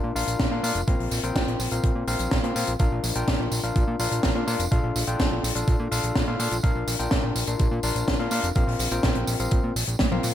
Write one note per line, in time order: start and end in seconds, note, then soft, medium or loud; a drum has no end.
0.00 0.12 A#2 medium
0.00 0.13 D4 medium
0.00 0.13 F4 medium
0.00 0.13 A#4 medium
0.00 0.13 F5 medium
0.15 0.24 A#1 medium
0.15 0.49 D4 medium
0.15 0.49 F4 medium
0.15 0.49 A#4 medium
0.15 0.49 F5 loud
0.15 open hi-hat loud
0.15 tambourine medium
0.27 0.36 A#1 medium
0.27 closed hi-hat medium
0.27 tambourine soft
0.40 0.48 A#1 loud
0.40 kick loud
0.40 snare loud
0.40 closed hi-hat medium
0.51 0.60 A#2 medium
0.51 0.62 D4 medium
0.51 0.62 F4 medium
0.51 0.62 A#4 medium
0.51 0.62 F5 medium
0.63 0.72 A#2 loud
0.63 0.80 D4 medium
0.63 0.80 F4 medium
0.63 0.80 A#4 medium
0.63 0.80 F5 loud
0.63 open hi-hat loud
0.63 tambourine medium
0.75 0.84 F1 medium
0.75 closed hi-hat medium
0.75 tambourine soft
0.88 0.96 A#1 loud
0.88 1.21 C4 medium
0.88 1.21 F4 medium
0.88 1.21 A#4 medium
0.88 1.21 F5 loud
0.88 kick loud
0.88 closed hi-hat medium
0.99 1.08 A#1 medium
0.99 open hi-hat medium
1.11 1.20 A#1 medium
1.11 open hi-hat loud
1.11 tambourine medium
1.23 1.32 A#1 medium
1.23 1.69 C4 medium
1.23 1.69 F4 medium
1.23 1.69 A#4 medium
1.23 1.69 G5 loud
1.23 closed hi-hat medium
1.23 tambourine soft
1.35 1.44 A#1 loud
1.35 kick loud
1.35 snare loud
1.35 closed hi-hat loud
1.35 tambourine soft
1.48 1.56 A#1 medium
1.48 closed hi-hat medium
1.60 1.68 A#1 medium
1.60 open hi-hat loud
1.60 tambourine medium
1.71 1.80 A#1 medium
1.71 2.05 C4 medium
1.71 2.05 F4 medium
1.71 2.05 A#4 medium
1.71 2.05 F5 medium
1.71 closed hi-hat medium
1.71 tambourine soft
1.84 1.92 A#1 loud
1.84 kick loud
1.84 closed hi-hat medium
1.95 2.04 A#2 medium
2.07 2.16 A#1 loud
2.07 2.41 C4 medium
2.07 2.41 F4 medium
2.07 2.41 A#4 medium
2.07 2.41 F5 loud
2.07 open hi-hat loud
2.07 tambourine medium
2.19 2.28 A#1 medium
2.19 closed hi-hat medium
2.19 tambourine soft
2.31 2.40 A#1 loud
2.31 kick loud
2.31 snare loud
2.31 closed hi-hat medium
2.44 2.52 A#2 medium
2.44 2.54 C4 medium
2.44 2.54 F4 medium
2.44 2.54 A#4 medium
2.44 2.54 F5 medium
2.44 closed hi-hat medium
2.56 2.64 A#2 loud
2.56 2.72 C4 loud
2.56 2.72 F4 medium
2.56 2.72 A#4 medium
2.56 2.72 F5 loud
2.56 open hi-hat loud
2.56 tambourine medium
2.67 2.76 A#1 medium
2.67 closed hi-hat medium
2.67 tambourine soft
2.79 2.88 A#1 loud
2.79 3.13 D4 medium
2.79 3.13 F4 medium
2.79 3.13 A#4 medium
2.79 3.13 F5 loud
2.79 kick loud
2.79 closed hi-hat medium
2.79 tambourine soft
2.92 3.00 A#1 medium
3.04 3.12 A#1 medium
3.04 open hi-hat loud
3.04 tambourine medium
3.15 3.24 A#1 medium
3.15 3.61 D4 medium
3.15 3.61 F4 medium
3.15 3.61 A#4 medium
3.15 3.61 G5 loud
3.15 closed hi-hat medium
3.15 tambourine soft
3.27 3.36 A#1 loud
3.27 kick loud
3.27 snare loud
3.27 closed hi-hat loud
3.27 tambourine soft
3.40 3.48 A#1 medium
3.52 3.60 A#1 medium
3.52 open hi-hat loud
3.52 tambourine medium
3.64 3.72 A#1 medium
3.64 3.97 D4 medium
3.64 3.97 F4 medium
3.64 3.97 A#4 medium
3.64 3.97 F5 medium
3.64 closed hi-hat medium
3.64 tambourine soft
3.76 3.84 A#1 loud
3.76 kick loud
3.76 closed hi-hat medium
3.76 tambourine soft
3.88 3.96 A#2 medium
3.99 4.08 A#1 loud
3.99 4.33 D4 medium
3.99 4.33 F4 medium
3.99 4.33 A#4 medium
3.99 4.33 F5 loud
3.99 open hi-hat loud
3.99 tambourine medium
4.12 4.20 A#1 medium
4.12 closed hi-hat medium
4.12 tambourine soft
4.23 4.32 A#1 loud
4.23 kick loud
4.23 snare loud
4.23 closed hi-hat medium
4.23 tambourine soft
4.35 4.44 A#2 medium
4.35 4.46 D4 medium
4.35 4.46 F4 medium
4.35 4.46 A#4 medium
4.35 4.46 F5 medium
4.47 4.56 A#2 loud
4.47 4.64 D4 medium
4.47 4.64 F4 medium
4.47 4.64 A#4 medium
4.47 4.64 F5 loud
4.47 open hi-hat loud
4.47 tambourine medium
4.59 4.68 F1 medium
4.59 closed hi-hat medium
4.59 tambourine soft
4.71 4.80 A#1 loud
4.71 5.05 D4 medium
4.71 5.05 F4 medium
4.71 5.05 A4 medium
4.71 5.05 F5 loud
4.71 kick loud
4.71 closed hi-hat medium
4.83 4.92 A#1 medium
4.96 5.04 A#1 medium
4.96 open hi-hat loud
4.96 tambourine medium
5.07 5.16 A#1 medium
5.07 5.53 D4 medium
5.07 5.53 F4 medium
5.07 5.53 A4 medium
5.07 5.53 G5 loud
5.07 closed hi-hat medium
5.07 tambourine soft
5.19 5.28 A#1 loud
5.19 kick loud
5.19 snare loud
5.19 closed hi-hat medium
5.19 tambourine soft
5.32 5.40 A#1 medium
5.43 5.52 A#1 medium
5.43 open hi-hat loud
5.43 tambourine medium
5.55 5.64 A#1 medium
5.55 5.89 D4 medium
5.55 5.89 F4 medium
5.55 5.89 A4 medium
5.55 5.89 F5 medium
5.55 closed hi-hat medium
5.55 tambourine soft
5.68 5.76 A#1 loud
5.68 kick loud
5.68 closed hi-hat medium
5.68 tambourine soft
5.80 5.88 A#2 medium
5.91 6.00 A#1 medium
5.91 6.25 D4 medium
5.91 6.25 F4 medium
5.91 6.25 A4 medium
5.91 6.25 F5 loud
5.91 open hi-hat loud
5.91 tambourine medium
6.04 6.12 A#1 medium
6.04 closed hi-hat medium
6.04 tambourine soft
6.16 6.24 A#1 loud
6.16 kick loud
6.16 snare loud
6.16 closed hi-hat medium
6.16 tambourine soft
6.28 6.36 A#2 medium
6.28 6.38 D4 medium
6.28 6.38 F4 medium
6.28 6.38 A4 medium
6.28 6.38 F5 medium
6.39 6.48 A#2 loud
6.39 6.56 D4 medium
6.39 6.56 F4 medium
6.39 6.56 A4 medium
6.39 6.56 F5 loud
6.39 open hi-hat loud
6.39 tambourine medium
6.51 6.60 A#1 medium
6.51 closed hi-hat medium
6.51 tambourine soft
6.63 6.72 A#1 loud
6.63 6.97 D4 medium
6.63 6.97 F4 medium
6.63 6.97 A#4 medium
6.63 6.97 F5 loud
6.63 kick loud
6.63 closed hi-hat medium
6.76 6.84 A#1 medium
6.87 6.96 A#1 loud
6.87 open hi-hat loud
6.87 tambourine medium
6.99 7.08 A#1 medium
6.99 7.45 D4 medium
6.99 7.45 F4 medium
6.99 7.45 A#4 medium
6.99 7.45 G5 loud
6.99 closed hi-hat medium
6.99 tambourine soft
7.11 7.20 A#1 loud
7.11 kick loud
7.11 snare loud
7.11 closed hi-hat medium
7.24 7.32 A#1 medium
7.35 7.44 A#1 medium
7.35 open hi-hat loud
7.35 tambourine medium
7.47 7.56 A#1 medium
7.47 7.81 D4 medium
7.47 7.81 F4 medium
7.47 7.81 A#4 medium
7.47 7.81 F5 loud
7.47 closed hi-hat medium
7.47 tambourine soft
7.59 7.68 A#1 loud
7.59 kick loud
7.59 closed hi-hat medium
7.59 tambourine soft
7.71 7.80 A#2 medium
7.83 7.92 A#1 medium
7.83 8.17 D4 loud
7.83 8.17 F4 medium
7.83 8.17 A#4 medium
7.83 8.17 F5 loud
7.83 open hi-hat loud
7.83 tambourine medium
7.95 8.04 A#1 medium
7.95 closed hi-hat medium
7.95 tambourine soft
8.08 8.16 A#1 loud
8.08 kick medium
8.08 snare loud
8.08 closed hi-hat medium
8.19 8.28 A#2 medium
8.19 8.30 D4 medium
8.19 8.30 F4 medium
8.19 8.30 A#4 medium
8.19 8.30 F5 medium
8.31 8.40 A#2 loud
8.31 8.48 D4 medium
8.31 8.48 F4 medium
8.31 8.48 A#4 medium
8.31 8.48 F5 loud
8.31 open hi-hat loud
8.31 tambourine medium
8.43 8.52 F1 medium
8.43 closed hi-hat medium
8.43 tambourine soft
8.55 8.64 A#1 loud
8.55 8.89 C4 medium
8.55 8.89 F4 medium
8.55 8.89 A#4 medium
8.55 8.89 F5 loud
8.55 kick loud
8.55 closed hi-hat medium
8.55 tambourine soft
8.67 8.76 A#1 medium
8.67 open hi-hat medium
8.79 8.88 A#1 medium
8.79 open hi-hat loud
8.79 tambourine medium
8.91 9.00 A#1 medium
8.91 9.37 C4 medium
8.91 9.37 F4 medium
8.91 9.37 A#4 medium
8.91 9.37 G5 loud
8.91 closed hi-hat medium
8.91 tambourine soft
9.03 9.12 A#1 loud
9.03 kick loud
9.03 snare loud
9.03 closed hi-hat loud
9.03 tambourine soft
9.15 9.24 A#1 medium
9.15 closed hi-hat medium
9.27 9.36 A#1 medium
9.27 open hi-hat loud
9.27 tambourine medium
9.40 9.48 A#1 medium
9.40 9.73 C4 medium
9.40 9.73 F4 medium
9.40 9.73 A#4 medium
9.40 9.73 F5 medium
9.40 closed hi-hat medium
9.40 tambourine soft
9.51 9.60 A#1 loud
9.51 kick loud
9.51 closed hi-hat loud
9.51 tambourine soft
9.63 9.72 A#2 medium
9.76 9.84 A#1 medium
9.76 open hi-hat loud
9.76 tambourine medium
9.87 9.96 A#1 medium
9.87 closed hi-hat medium
9.87 tambourine soft
9.99 10.08 A#2 loud
9.99 kick loud
9.99 snare loud
9.99 closed hi-hat loud
9.99 high tom medium
9.99 tambourine soft
10.12 10.20 A#1 medium
10.12 10.34 C4 loud
10.12 10.34 F4 medium
10.12 10.34 A#4 medium
10.12 10.34 F5 loud
10.12 high tom medium
10.23 10.32 A#2 medium
10.23 open hi-hat loud
10.23 tambourine medium